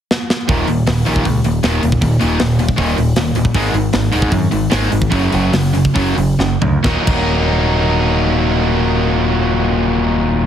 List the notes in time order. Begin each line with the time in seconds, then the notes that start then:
0.11 snare
0.30 snare
0.48 D#1 D#2 A#2 D#3, kick, open hi-hat
0.68 D#1 D#2 A#2, open hi-hat
0.87 D#1 D#2 A#2, snare, open hi-hat
1.05 A#1 D#2 A#2 D#3, open hi-hat
1.16 kick
1.25 C#2 D#2 A#2, kick, open hi-hat
1.44 D#1 D#2 A#2, open hi-hat
1.63 D#1 D#2 A#2 D#3, snare, open hi-hat
1.82 D#1 D#2 A#2, open hi-hat
1.92 kick
2.01 D#1 D#2 A#2, kick, open hi-hat
2.19 D#1 D#2 A#2 D#3, open hi-hat
2.40 D#1 D#2 A#2, snare, open hi-hat
2.59 D#2 A#2, open hi-hat
2.68 kick
2.76 D#1 D#2 A#2 D#3, kick, open hi-hat
2.97 D#1 D#2 A#2, open hi-hat
3.16 D#1 D#2 A#2, snare, open hi-hat
3.35 D#1 D#2 A#2, open hi-hat
3.45 kick
3.54 G#1 G#2 D#3 G#3, kick, open hi-hat
3.73 G#1 G#2 D#3, open hi-hat
3.93 G#1 G#2 D#3, snare, open hi-hat
4.12 D#1 G#2 D#3 G#3, open hi-hat
4.22 kick
4.32 F#2 G#2 D#3, kick, open hi-hat
4.51 G#1 G#2 D#3, open hi-hat
4.70 G#1 G#2 D#3 G#3, snare, open hi-hat
4.90 G#1 G#2 D#3, open hi-hat
5.02 kick
5.10 F#1 F#2 C#3 F#3, kick, open hi-hat
5.31 F#1 F#2 C#3 F#3, open hi-hat
5.53 F#1 F#2 C#3, snare, open hi-hat
5.74 F#2 C#3, open hi-hat
5.85 kick
5.94 F#1 F#2 C#3 F#3, kick, open hi-hat
6.16 F#1 F#2 C#3, open hi-hat
6.39 F#1 F#2 C#3, snare
6.61 D2 F#2 C#3, floor tom
6.83 D#1 D#2 A#2 D#3 F#3 A#3 D#4, kick, snare
7.05 D#1 D#2 A#2 D#3 F#3 A#3 D#4, kick, crash